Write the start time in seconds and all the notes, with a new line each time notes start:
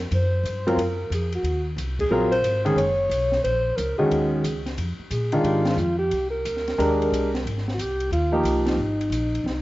Already playing: F2
0.11 F#2 C5, ride
0.44 G2, hi-hat pedal, ride
0.67 F#3 C4 F4 A#4, ride
0.77 F#2 A#4, ride
1.10 F2 G#4, hi-hat pedal, ride
1.32 F#4, ride
1.43 D#2, ride
1.76 C2, hi-hat pedal, ride
1.99 G#4, kick, ride
2.09 A#1 F#3 C4 F4 A#4
2.31 C5, ride
2.42 G#1, hi-hat pedal, ride
2.65 D#3 G#3 C#4 G#4, ride
2.76 F#1 C#5, ride
3.10 B1, hi-hat pedal, ride
3.32 snare
3.44 A#1 C5, ride
3.76 C#2 A#4, hi-hat pedal, ride
3.98 D#3 G#3 C#4 F#4 G#4
4.11 D#2, ride
4.44 C#2, hi-hat pedal, ride
4.66 snare, ride
4.78 F2, ride
4.99 muted upright bass stroke
5.11 A#2 G#4, hi-hat pedal, ride
5.32 D#3 G#3 D4 F4, ride
5.43 G#2 G4, ride
5.65 F4, snare, ride
5.77 F2, hi-hat pedal
5.99 G4
6.11 C2, ride
6.30 A#4
6.45 D2, hi-hat pedal, ride
6.57 snare
6.68 snare, ride
6.78 D#2 G#3 D4 G4 A#4, ride
7.02 ride
7.11 C2, hi-hat pedal, ride
7.35 snare, ride
7.45 G#1, ride
7.58 snare
7.68 snare
7.74 F#4
7.78 C2 G4, hi-hat pedal, ride
8.00 ride
8.11 D#2 F4, ride
8.32 F3 A#3 D#4 G4
8.43 C2, hi-hat pedal, ride
8.66 D#4, snare, ride
8.77 G#1
9.01 ride
9.10 A#1, hi-hat pedal, ride
9.35 ride
9.44 C2, snare